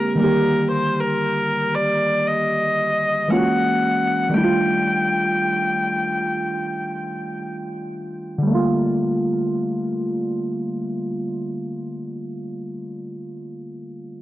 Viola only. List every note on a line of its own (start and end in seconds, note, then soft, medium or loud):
0.00 0.16 A#4 medium
0.20 0.68 A#4 medium
0.71 1.01 C5 medium
1.00 1.76 A#4 medium
1.74 2.28 D5 medium
2.27 3.31 D#5 loud
3.30 4.35 F#5 loud
4.33 7.44 G5 loud